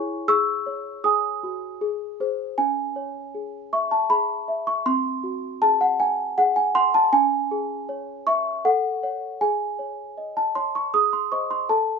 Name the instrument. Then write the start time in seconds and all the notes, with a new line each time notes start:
celesta
Already playing: E4 G#4 C#5 G#5 C#6
0.28 G#4 C#6 E6
0.66 C#5
1.04 G#4 G#5 D#6
1.43 F#4
1.81 G#4
2.20 G#4 C5
2.58 C#4 G#5
2.96 C#5
3.35 G#4
3.73 E5 C#6
3.91 A5
4.10 G#4 B5
4.48 E5
4.67 C#6
4.86 C4 C6
5.23 F#4
5.62 G#4 A5
5.81 F#5
6.00 F#5 G#5
6.38 G#4 F#5
6.56 G#5
6.75 F#5 C6
6.94 A5
7.13 C#4 G#5
7.51 G#4
7.89 C#5
8.27 E5 C#6
8.65 A4 F#5
9.03 C#5 F#5
9.41 G#4 G#5
9.79 C#5
10.18 D#5
10.37 A5
10.55 C#5 C6
10.75 C#6
10.94 G#4 D#6
11.13 C6
11.32 C5 D#5 C#6
11.51 C6
11.69 A4 A5